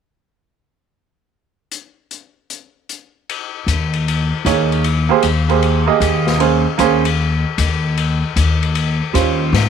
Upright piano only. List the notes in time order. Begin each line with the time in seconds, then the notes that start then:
4.45 A#3 D#4 G#4 C#5
5.09 A#3 G4 G#4 C5
5.48 A#3 G4 G#4 C5
5.86 A#3 G4 G#4 D#5
6.39 A#3 C#4 G#4 C5
6.78 A#3 C#4 G#4 C5
9.13 G3 C#4 F4 C5